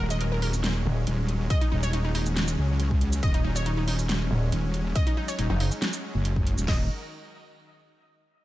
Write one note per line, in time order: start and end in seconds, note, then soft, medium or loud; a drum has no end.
0.00 0.84 D#1 loud
0.00 6.64 F#3 medium
0.00 6.64 G#3 medium
0.00 6.66 C#4 medium
0.10 0.19 D#5 medium
0.10 closed hi-hat medium
0.10 shaker medium
0.21 0.30 A#4 medium
0.21 closed hi-hat medium
0.32 0.41 A#4 medium
0.42 0.52 A#4 medium
0.42 open hi-hat medium
0.53 shaker medium
0.64 snare loud
0.64 closed hi-hat medium
0.85 1.05 D#1 loud
1.07 1.49 D#1 medium
1.07 closed hi-hat medium
1.29 closed hi-hat medium
1.50 1.60 D#5 loud
1.50 kick loud
1.50 closed hi-hat medium
1.61 1.70 D#4 medium
1.61 closed hi-hat soft
1.72 2.56 D#1 loud
1.72 1.81 D#4 medium
1.83 1.92 C#5 loud
1.83 closed hi-hat medium
1.83 shaker medium
1.93 2.03 D#4 medium
1.93 closed hi-hat medium
2.05 2.13 D#4 medium
2.15 2.24 D#4 medium
2.15 open hi-hat medium
2.26 shaker medium
2.36 snare loud
2.36 closed hi-hat medium
2.48 shaker medium
2.58 3.21 C#2 loud
2.80 closed hi-hat medium
2.91 kick medium
3.01 closed hi-hat medium
3.12 shaker medium
3.23 3.43 D#1 loud
3.23 3.32 D#5 loud
3.23 kick loud
3.23 closed hi-hat medium
3.34 3.43 D#4 medium
3.34 closed hi-hat soft
3.44 4.29 D#1 loud
3.44 3.54 D#4 medium
3.56 3.65 C#5 medium
3.56 closed hi-hat medium
3.56 shaker medium
3.66 3.76 D#4 medium
3.66 closed hi-hat medium
3.77 3.86 D#4 medium
3.88 3.97 D#4 medium
3.88 open hi-hat loud
3.99 shaker medium
4.09 snare loud
4.09 closed hi-hat medium
4.31 4.51 D#1 loud
4.52 4.94 D#1 medium
4.52 closed hi-hat medium
4.74 closed hi-hat medium
4.95 5.05 D#5 loud
4.95 kick loud
4.95 closed hi-hat medium
5.07 5.16 D#4 medium
5.07 closed hi-hat medium
5.17 5.27 D#4 medium
5.28 5.37 C#5 loud
5.28 closed hi-hat medium
5.28 shaker medium
5.39 5.48 D#1 loud
5.39 5.48 D#4 medium
5.39 closed hi-hat medium
5.50 5.70 F#1 loud
5.50 5.59 D#4 medium
5.60 5.70 D#4 medium
5.60 open hi-hat loud
5.72 shaker medium
5.82 snare loud
5.82 closed hi-hat medium
5.93 shaker medium
6.15 6.56 F#1 loud
6.25 closed hi-hat medium
6.36 kick medium
6.47 closed hi-hat medium
6.58 6.67 D#1 medium
6.58 shaker medium
6.68 6.88 D#1 loud
6.68 6.88 D#3 medium
6.68 6.88 D#4 medium
6.68 6.88 F#4 medium
6.68 6.88 A#4 medium
6.68 6.84 D#5 medium
6.68 6.88 A#5 medium
6.68 kick loud
6.68 snare loud
6.68 crash medium